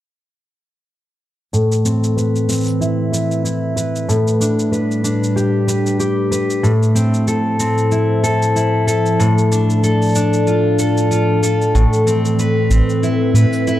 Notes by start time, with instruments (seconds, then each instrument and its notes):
1.53 steel-string acoustic guitar A2, ambient pad E3, cabasa
1.72 cabasa
1.85 steel-string acoustic guitar C4, cabasa
2.04 ambient pad C4, cabasa
2.17 steel-string acoustic guitar B4, cabasa
2.36 cabasa
2.49 steel-string acoustic guitar C4, cabasa
2.52 cabasa
2.55 cabasa
2.60 cabasa
2.63 cabasa
2.65 cabasa
2.68 ambient pad A4 B4, cabasa
2.81 steel-string acoustic guitar E4, cabasa
3.12 steel-string acoustic guitar B4, cabasa
3.31 cabasa
3.44 steel-string acoustic guitar E4, cabasa
3.76 steel-string acoustic guitar B4, cabasa
3.96 cabasa
4.09 steel-string acoustic guitar A2, ambient pad A2, cabasa
4.28 cabasa
4.40 steel-string acoustic guitar D4, cabasa
4.48 ambient pad G3
4.59 cabasa
4.72 steel-string acoustic guitar B4, cabasa
4.91 cabasa
5.04 steel-string acoustic guitar D4, ambient pad D4, cabasa
5.24 cabasa
5.36 steel-string acoustic guitar G4, cabasa
5.67 steel-string acoustic guitar B4, cabasa
5.86 cabasa
6.00 steel-string acoustic guitar G4, cabasa
6.31 steel-string acoustic guitar B4, cabasa
6.50 cabasa
6.63 steel-string acoustic guitar A2, cabasa
6.80 ambient pad E4, cabasa
6.89 ambient pad F3
6.95 steel-string acoustic guitar C4, cabasa
7.14 cabasa
7.28 steel-string acoustic guitar A4, cabasa
7.54 ambient pad C5
7.60 steel-string acoustic guitar C4, cabasa
7.78 cabasa
7.92 steel-string acoustic guitar E4, cabasa
8.23 steel-string acoustic guitar A4, cabasa
8.42 cabasa
8.56 steel-string acoustic guitar E4, cabasa
8.87 steel-string acoustic guitar A4, cabasa
9.06 cabasa
9.19 steel-string acoustic guitar A2, cabasa
9.38 cabasa
9.44 ambient pad D4
9.52 steel-string acoustic guitar D4, ambient pad D5, cabasa
9.70 cabasa
9.84 steel-string acoustic guitar A4, cabasa
10.02 cabasa
10.04 cabasa
10.06 cabasa
10.09 cabasa
10.10 cabasa
10.12 cabasa
10.14 cabasa
10.15 steel-string acoustic guitar D4, cabasa
10.33 cabasa
10.47 steel-string acoustic guitar F4, cabasa
10.79 steel-string acoustic guitar A4, cabasa
10.97 cabasa
11.11 steel-string acoustic guitar F4, cabasa
11.43 steel-string acoustic guitar A4, cabasa
11.62 cabasa
11.75 sub bass A1, steel-string acoustic guitar A2, ambient pad E3, cabasa
11.93 cabasa
12.07 steel-string acoustic guitar C4, cabasa
12.17 ambient pad C4
12.25 cabasa
12.31 ambient pad B4
12.39 steel-string acoustic guitar B4, cabasa
12.70 sub bass A1, steel-string acoustic guitar C4, cabasa
12.90 cabasa
13.03 steel-string acoustic guitar E4, cabasa
13.34 sub bass A2, steel-string acoustic guitar B4, cabasa
13.53 cabasa
13.67 steel-string acoustic guitar E4, cabasa